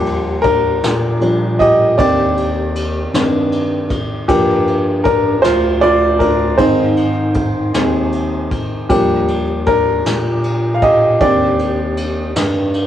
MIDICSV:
0, 0, Header, 1, 4, 480
1, 0, Start_track
1, 0, Key_signature, -3, "major"
1, 0, Tempo, 769231
1, 1240, Time_signature, 6, 3, 24, 8
1, 8030, End_track
2, 0, Start_track
2, 0, Title_t, "Upright piano"
2, 0, Program_c, 0, 0
2, 0, Control_c, 0, 64, 127
2, 0, Note_on_c, 0, 53, 48
2, 0, Note_on_c, 0, 55, 48
2, 0, Note_on_c, 0, 58, 62
2, 0, Note_on_c, 0, 62, 57
2, 0, Note_on_c, 0, 67, 81
2, 251, Note_off_c, 0, 58, 0
2, 261, Note_on_c, 0, 70, 102
2, 266, Note_off_c, 0, 62, 0
2, 275, Note_on_c, 0, 62, 63
2, 285, Note_off_c, 0, 67, 0
2, 488, Note_off_c, 0, 53, 0
2, 491, Note_off_c, 0, 55, 0
2, 753, Note_off_c, 0, 62, 0
2, 756, Note_on_c, 0, 53, 49
2, 758, Note_on_c, 0, 55, 46
2, 762, Note_on_c, 0, 62, 53
2, 974, Note_off_c, 0, 53, 0
2, 975, Note_off_c, 0, 55, 0
2, 977, Note_off_c, 0, 62, 0
2, 994, Note_on_c, 0, 75, 89
2, 1005, Note_on_c, 0, 67, 71
2, 1014, Note_off_c, 0, 70, 0
2, 1226, Note_off_c, 0, 67, 0
2, 1234, Note_on_c, 0, 74, 93
2, 1237, Note_on_c, 0, 51, 53
2, 1243, Note_on_c, 0, 60, 47
2, 1244, Note_off_c, 0, 75, 0
2, 1246, Note_on_c, 0, 62, 55
2, 1247, Control_c, 0, 64, 0
2, 1247, Note_on_c, 0, 67, 74
2, 1340, Control_c, 0, 64, 127
2, 1558, Note_off_c, 0, 51, 0
2, 1561, Note_off_c, 0, 60, 0
2, 1562, Note_off_c, 0, 62, 0
2, 1960, Note_on_c, 0, 51, 49
2, 1963, Note_on_c, 0, 60, 43
2, 1964, Note_on_c, 0, 62, 54
2, 2174, Note_off_c, 0, 51, 0
2, 2175, Note_off_c, 0, 60, 0
2, 2176, Note_off_c, 0, 62, 0
2, 2408, Note_off_c, 0, 74, 0
2, 2414, Note_off_c, 0, 67, 0
2, 2671, Note_on_c, 0, 53, 58
2, 2671, Note_on_c, 0, 67, 92
2, 2675, Note_on_c, 0, 58, 70
2, 2676, Note_on_c, 0, 62, 62
2, 2682, Control_c, 0, 64, 0
2, 2788, Control_c, 0, 64, 127
2, 3126, Note_off_c, 0, 67, 0
2, 3131, Note_off_c, 0, 58, 0
2, 3144, Note_on_c, 0, 70, 93
2, 3146, Note_off_c, 0, 62, 0
2, 3155, Note_on_c, 0, 62, 73
2, 3365, Note_off_c, 0, 53, 0
2, 3377, Note_off_c, 0, 62, 0
2, 3382, Note_on_c, 0, 72, 100
2, 3393, Note_on_c, 0, 65, 81
2, 3395, Note_off_c, 0, 70, 0
2, 3615, Note_off_c, 0, 65, 0
2, 3627, Note_on_c, 0, 74, 106
2, 3633, Note_off_c, 0, 72, 0
2, 3639, Note_on_c, 0, 65, 83
2, 3851, Note_off_c, 0, 74, 0
2, 3857, Note_off_c, 0, 65, 0
2, 3863, Note_on_c, 0, 70, 82
2, 3877, Note_on_c, 0, 62, 68
2, 3917, Note_off_c, 0, 70, 0
2, 3930, Note_off_c, 0, 62, 0
2, 4103, Note_on_c, 0, 72, 94
2, 4106, Note_on_c, 0, 51, 55
2, 4111, Note_on_c, 0, 56, 52
2, 4114, Note_on_c, 0, 60, 64
2, 4114, Note_on_c, 0, 63, 69
2, 4118, Control_c, 0, 64, 0
2, 4234, Control_c, 0, 64, 127
2, 4426, Note_off_c, 0, 51, 0
2, 4429, Note_off_c, 0, 56, 0
2, 4430, Note_off_c, 0, 60, 0
2, 4835, Note_on_c, 0, 51, 50
2, 4835, Note_on_c, 0, 56, 44
2, 4839, Note_on_c, 0, 60, 51
2, 5051, Note_off_c, 0, 51, 0
2, 5051, Note_off_c, 0, 56, 0
2, 5053, Note_off_c, 0, 60, 0
2, 5286, Note_off_c, 0, 72, 0
2, 5292, Note_off_c, 0, 63, 0
2, 5549, Note_on_c, 0, 67, 83
2, 5552, Note_on_c, 0, 53, 51
2, 5556, Note_on_c, 0, 55, 45
2, 5562, Control_c, 0, 64, 0
2, 5562, Note_on_c, 0, 62, 62
2, 5563, Note_on_c, 0, 58, 62
2, 5687, Control_c, 0, 64, 127
2, 5873, Note_off_c, 0, 53, 0
2, 5875, Note_off_c, 0, 55, 0
2, 5878, Note_off_c, 0, 62, 0
2, 6014, Note_off_c, 0, 58, 0
2, 6032, Note_on_c, 0, 70, 100
2, 6042, Note_on_c, 0, 62, 67
2, 6047, Note_off_c, 0, 67, 0
2, 6684, Note_off_c, 0, 70, 0
2, 6689, Note_off_c, 0, 62, 0
2, 6704, Note_on_c, 0, 77, 69
2, 6751, Note_off_c, 0, 77, 0
2, 6754, Note_on_c, 0, 75, 84
2, 6762, Note_on_c, 0, 67, 71
2, 6808, Note_off_c, 0, 75, 0
2, 6815, Note_off_c, 0, 67, 0
2, 6994, Note_on_c, 0, 51, 51
2, 6995, Note_on_c, 0, 74, 94
2, 6998, Note_on_c, 0, 60, 52
2, 7002, Control_c, 0, 64, 0
2, 7003, Note_on_c, 0, 62, 60
2, 7004, Note_on_c, 0, 67, 70
2, 7113, Control_c, 0, 64, 127
2, 8030, Note_off_c, 0, 51, 0
2, 8030, Note_off_c, 0, 60, 0
2, 8030, Note_off_c, 0, 62, 0
2, 8030, Note_off_c, 0, 67, 0
2, 8030, Note_off_c, 0, 74, 0
2, 8030, End_track
3, 0, Start_track
3, 0, Title_t, "Bass clarinet"
3, 0, Program_c, 1, 71
3, 0, Note_on_c, 1, 39, 90
3, 494, Note_off_c, 1, 39, 0
3, 517, Note_on_c, 1, 46, 91
3, 1215, Note_off_c, 1, 46, 0
3, 1240, Note_on_c, 1, 39, 98
3, 1954, Note_on_c, 1, 43, 101
3, 1964, Note_off_c, 1, 39, 0
3, 2480, Note_off_c, 1, 43, 0
3, 2675, Note_on_c, 1, 43, 108
3, 3388, Note_on_c, 1, 38, 103
3, 3397, Note_off_c, 1, 43, 0
3, 4082, Note_off_c, 1, 38, 0
3, 4108, Note_on_c, 1, 44, 108
3, 4805, Note_off_c, 1, 44, 0
3, 4830, Note_on_c, 1, 39, 94
3, 5361, Note_off_c, 1, 39, 0
3, 5554, Note_on_c, 1, 39, 93
3, 6250, Note_off_c, 1, 39, 0
3, 6272, Note_on_c, 1, 46, 92
3, 6968, Note_off_c, 1, 46, 0
3, 6994, Note_on_c, 1, 39, 106
3, 7687, Note_off_c, 1, 39, 0
3, 7712, Note_on_c, 1, 43, 98
3, 8030, Note_off_c, 1, 43, 0
3, 8030, End_track
4, 0, Start_track
4, 0, Title_t, "Drums"
4, 39, Note_on_c, 9, 51, 41
4, 101, Note_off_c, 9, 51, 0
4, 273, Note_on_c, 9, 51, 53
4, 277, Note_on_c, 9, 36, 96
4, 336, Note_off_c, 9, 51, 0
4, 340, Note_off_c, 9, 36, 0
4, 521, Note_on_c, 9, 51, 68
4, 523, Note_on_c, 9, 38, 109
4, 583, Note_off_c, 9, 51, 0
4, 585, Note_off_c, 9, 38, 0
4, 756, Note_on_c, 9, 51, 43
4, 819, Note_off_c, 9, 51, 0
4, 999, Note_on_c, 9, 36, 83
4, 1001, Note_on_c, 9, 51, 50
4, 1062, Note_off_c, 9, 36, 0
4, 1063, Note_off_c, 9, 51, 0
4, 1240, Note_on_c, 9, 36, 115
4, 1241, Note_on_c, 9, 51, 72
4, 1303, Note_off_c, 9, 36, 0
4, 1304, Note_off_c, 9, 51, 0
4, 1480, Note_on_c, 9, 51, 42
4, 1542, Note_off_c, 9, 51, 0
4, 1719, Note_on_c, 9, 51, 54
4, 1781, Note_off_c, 9, 51, 0
4, 1960, Note_on_c, 9, 51, 68
4, 1962, Note_on_c, 9, 38, 102
4, 2022, Note_off_c, 9, 51, 0
4, 2025, Note_off_c, 9, 38, 0
4, 2197, Note_on_c, 9, 51, 47
4, 2259, Note_off_c, 9, 51, 0
4, 2434, Note_on_c, 9, 51, 52
4, 2436, Note_on_c, 9, 36, 81
4, 2496, Note_off_c, 9, 51, 0
4, 2498, Note_off_c, 9, 36, 0
4, 2676, Note_on_c, 9, 36, 120
4, 2676, Note_on_c, 9, 51, 76
4, 2738, Note_off_c, 9, 36, 0
4, 2739, Note_off_c, 9, 51, 0
4, 2916, Note_on_c, 9, 51, 42
4, 2979, Note_off_c, 9, 51, 0
4, 3149, Note_on_c, 9, 51, 57
4, 3154, Note_on_c, 9, 36, 95
4, 3212, Note_off_c, 9, 51, 0
4, 3216, Note_off_c, 9, 36, 0
4, 3395, Note_on_c, 9, 51, 70
4, 3397, Note_on_c, 9, 38, 110
4, 3457, Note_off_c, 9, 51, 0
4, 3460, Note_off_c, 9, 38, 0
4, 3634, Note_on_c, 9, 51, 46
4, 3696, Note_off_c, 9, 51, 0
4, 3870, Note_on_c, 9, 36, 85
4, 3871, Note_on_c, 9, 51, 51
4, 3933, Note_off_c, 9, 36, 0
4, 3934, Note_off_c, 9, 51, 0
4, 4108, Note_on_c, 9, 51, 76
4, 4109, Note_on_c, 9, 36, 111
4, 4170, Note_off_c, 9, 51, 0
4, 4171, Note_off_c, 9, 36, 0
4, 4346, Note_on_c, 9, 51, 41
4, 4409, Note_off_c, 9, 51, 0
4, 4581, Note_on_c, 9, 51, 54
4, 4589, Note_on_c, 9, 36, 91
4, 4644, Note_off_c, 9, 51, 0
4, 4651, Note_off_c, 9, 36, 0
4, 4830, Note_on_c, 9, 51, 72
4, 4832, Note_on_c, 9, 38, 102
4, 4892, Note_off_c, 9, 51, 0
4, 4895, Note_off_c, 9, 38, 0
4, 5068, Note_on_c, 9, 51, 45
4, 5131, Note_off_c, 9, 51, 0
4, 5310, Note_on_c, 9, 51, 49
4, 5312, Note_on_c, 9, 36, 80
4, 5372, Note_off_c, 9, 51, 0
4, 5375, Note_off_c, 9, 36, 0
4, 5552, Note_on_c, 9, 51, 75
4, 5553, Note_on_c, 9, 36, 114
4, 5614, Note_off_c, 9, 51, 0
4, 5615, Note_off_c, 9, 36, 0
4, 5792, Note_on_c, 9, 51, 45
4, 5854, Note_off_c, 9, 51, 0
4, 6029, Note_on_c, 9, 51, 53
4, 6034, Note_on_c, 9, 36, 92
4, 6092, Note_off_c, 9, 51, 0
4, 6097, Note_off_c, 9, 36, 0
4, 6276, Note_on_c, 9, 51, 74
4, 6278, Note_on_c, 9, 38, 99
4, 6338, Note_off_c, 9, 51, 0
4, 6341, Note_off_c, 9, 38, 0
4, 6511, Note_on_c, 9, 51, 45
4, 6573, Note_off_c, 9, 51, 0
4, 6751, Note_on_c, 9, 51, 52
4, 6753, Note_on_c, 9, 36, 87
4, 6813, Note_off_c, 9, 51, 0
4, 6815, Note_off_c, 9, 36, 0
4, 6991, Note_on_c, 9, 51, 74
4, 6994, Note_on_c, 9, 36, 118
4, 7054, Note_off_c, 9, 51, 0
4, 7056, Note_off_c, 9, 36, 0
4, 7233, Note_on_c, 9, 51, 42
4, 7295, Note_off_c, 9, 51, 0
4, 7469, Note_on_c, 9, 51, 54
4, 7531, Note_off_c, 9, 51, 0
4, 7711, Note_on_c, 9, 51, 72
4, 7713, Note_on_c, 9, 38, 106
4, 7773, Note_off_c, 9, 51, 0
4, 7775, Note_off_c, 9, 38, 0
4, 7949, Note_on_c, 9, 51, 47
4, 8011, Note_off_c, 9, 51, 0
4, 8030, End_track
0, 0, End_of_file